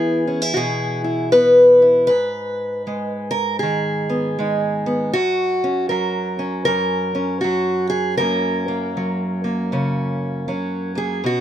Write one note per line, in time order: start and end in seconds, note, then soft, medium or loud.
0.00 2.09 E3 medium
0.00 1.32 B3 medium
0.00 0.27 E4 medium
0.00 0.51 G#4 medium
0.27 0.42 C#4 soft
0.42 1.03 E4 soft
0.54 2.09 B2 medium
0.54 0.58 F#4 medium
0.54 1.32 G#4 medium
1.04 1.80 E4 soft
1.32 2.06 B3 medium
1.32 2.06 B4 loud
1.82 2.07 E4 medium
2.07 5.11 G#2 medium
2.07 3.30 B4 loud
2.87 4.37 G#3 medium
3.31 3.59 A#4 loud
3.59 5.11 D#3 medium
3.59 5.13 G#4 medium
4.09 4.85 B3 soft
4.39 5.11 G#3 medium
4.39 5.12 D#4 soft
4.86 5.11 B3 medium
5.13 6.67 F#2 medium
5.13 5.89 F#4 loud
5.64 6.38 C#4 soft
5.89 7.44 F#3 medium
5.89 6.64 A#4 medium
6.39 7.14 C#4 medium
6.65 8.18 F#2 medium
6.65 7.40 A#4 loud
7.15 8.20 C#4 medium
7.41 8.19 F#3 medium
7.41 7.89 F#4 medium
7.90 8.17 G#4 medium
8.18 11.25 F#2 medium
8.18 8.96 F#3 soft
8.18 8.67 A#3 soft
8.18 9.71 C#4 medium
8.18 10.95 A#4 loud
8.68 9.43 A#3 medium
8.97 10.47 F#3 medium
9.44 10.94 A#3 soft
9.72 10.49 C#3 medium
9.72 10.48 C#4 medium
10.48 11.21 F#3 medium
10.48 11.40 C#4 soft
10.95 11.21 A#3 soft
10.95 11.26 G#4 medium
11.24 11.40 B2 medium
11.24 11.40 F#4 medium